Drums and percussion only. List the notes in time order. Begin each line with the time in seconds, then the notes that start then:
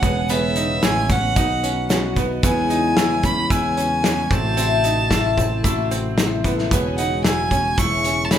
0.03 kick, closed hi-hat, shaker
0.29 closed hi-hat, shaker
0.56 closed hi-hat, shaker
0.83 snare, closed hi-hat, shaker
1.09 kick, closed hi-hat, shaker
1.36 kick, closed hi-hat, shaker
1.64 closed hi-hat, shaker
1.90 snare, closed hi-hat, shaker
2.16 kick, closed hi-hat, shaker
2.43 kick, closed hi-hat, shaker
2.70 closed hi-hat, shaker
2.97 snare, closed hi-hat, shaker
3.23 kick, closed hi-hat, shaker
3.50 kick, closed hi-hat, shaker
3.77 closed hi-hat, shaker
4.04 snare, closed hi-hat, shaker
4.31 kick, closed hi-hat, shaker
4.57 closed hi-hat, shaker
4.84 closed hi-hat, shaker
5.11 kick, snare, closed hi-hat, shaker
5.37 kick, closed hi-hat, shaker
5.64 kick, closed hi-hat, shaker
5.91 closed hi-hat, shaker
6.18 snare, closed hi-hat, shaker
6.44 kick, closed hi-hat, shaker
6.58 snare
6.71 kick, closed hi-hat, shaker
6.98 closed hi-hat, shaker
7.24 snare, closed hi-hat, shaker
7.51 kick, closed hi-hat, shaker
7.78 kick, closed hi-hat, shaker
8.04 closed hi-hat, shaker
8.31 snare, closed hi-hat, shaker